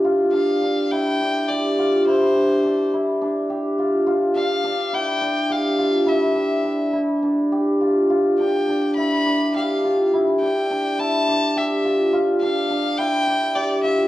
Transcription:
<<
  \new Staff \with { instrumentName = "Violin" } { \time 7/8 \key d \dorian \tempo 4 = 105 r8 f''4 g''4 d''4 | c''4. r2 | r8 f''4 g''4 f''4 | e''4. r2 |
r8 g''4 b''4 f''4 | r8 g''4 a''4 e''4 | r8 f''4 g''4 d''8 e''8 | }
  \new Staff \with { instrumentName = "Hammered dulcimer" } { \time 7/8 \key d \dorian f'8 d'8 d'8 e'8 d'8 g'8 f'8 | e'8 d'8 d'8 e'8 d'8 g'8 f'8 | f'8 d'8 d'8 e'8 d'8 g'8 f'8 | e'8 d'8 d'8 e'8 d'8 g'8 f'8 |
f'8 d'8 d'8 e'8 d'8 g'8 f'8 | e'8 d'8 d'8 e'8 d'8 g'8 f'8 | f'8 d'8 d'8 e'8 d'8 g'8 f'8 | }
>>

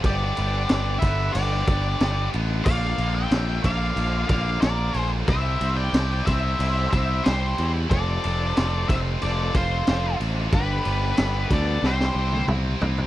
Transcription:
<<
  \new Staff \with { instrumentName = "Lead electric guitar" } { \time 4/4 \key c \major \tempo 4 = 92 d''4. e''8 d''4. r8 | f''8. g''8. f''4 f''8 d''8. r16 | e''8. g''8. e''4 e''8 c''8. r16 | d''4. e''8 d''8 c''4 r8 |
b'4. d''8 c''4 r4 | }
  \new Staff \with { instrumentName = "Lead electric guitar" } { \time 4/4 \key c \major g'4. b'8 g'4. r8 | d''8. e''8. d''4 d''8 bes'8. r16 | c''8. d''8. c''4 c''8 g'8. r16 | a'4. c''8 a'8 f'4 r8 |
g'4. a'8 g'4 r4 | }
  \new Staff \with { instrumentName = "Distorted electric guitar" } { \clef bass \time 4/4 \key c \major <g, d g b d'>8 <g, d g b d'>8 <g, d g b d'>8 <g, d g b d'>8 <g, d g b d'>8 <g, d g b d'>8 <g, d g b d'>8 <g, d g b d'>8 | <bes, d f bes d'>8 <bes, d f bes d'>8 <bes, d f bes d'>8 <bes, d f bes d'>8 <bes, d f bes d'>8 <bes, d f bes d'>8 <bes, d f bes d'>8 <bes, d f bes d'>8 | <c g c' e'>8 <c g c' e'>8 <c g c' e'>8 <c g c' e'>8 <c g c' e'>8 <c g c' e'>8 <c g c' e'>8 <c g c' e'>8 | <f, c f a c'>8 <f, c f a c'>8 <f, c f a c'>8 <f, c f a c'>8 <f, c f a c'>8 <f, c f a c'>8 <f, c f a c'>8 <f, c f a c'>8 |
<g, d g b d'>8 <g, d g b d'>8 <g, d g b d'>8 <g, d g b d'>8 <c g c' e'>8 <c g c' e'>8 <c g c' e'>8 <c g c' e'>8 | }
  \new Staff \with { instrumentName = "Picked electric bass" } { \clef bass \time 4/4 \key c \major g,,8 g,,8 g,,8 g,,8 g,,8 g,,8 g,,8 a,,8 | bes,,8 bes,,8 bes,,8 bes,,8 bes,,8 bes,,8 bes,,8 bes,,8 | c,8 c,8 c,8 c,8 c,8 c,8 c,8 e,8 | f,,8 f,,8 f,,8 f,,8 f,,8 f,,8 f,,8 a,,8 |
g,,8 g,,8 g,,8 d,8 c,8 c,8 c,8 c,8 | }
  \new DrumStaff \with { instrumentName = "Drums" } \drummode { \time 4/4 <bd cymr>8 cymr8 <cymr sn>8 <bd cymr>8 cymr8 <bd cymr>8 <cymr sn>8 cymr8 | <cymc bd>8 cymr8 <cymr sn>8 <bd cymr>8 cymr8 <bd cymr>8 <cymr sn>8 cymr8 | <bd cymr>8 cymr8 <cymr sn>8 <bd cymr sn>8 cymr8 <bd cymr>8 <cymr sn>8 cymr8 | <bd cymr>8 cymr8 <cymr sn>8 <bd cymr>8 cymr8 <bd cymr>8 <cymr sn>8 cymr8 |
<bd cymr>8 cymr8 <cymr sn>8 <bd cymr sn>8 sn16 sn8 tommh16 toml8 tomfh16 tomfh16 | }
>>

